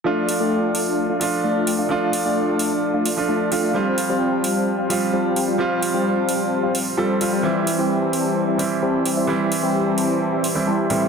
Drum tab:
HH |-o-o-o-o|-o-o-o-o|-o-o-o-o|-o-o-o-o|

HH |-o-o-o-o|-o-o-o-o|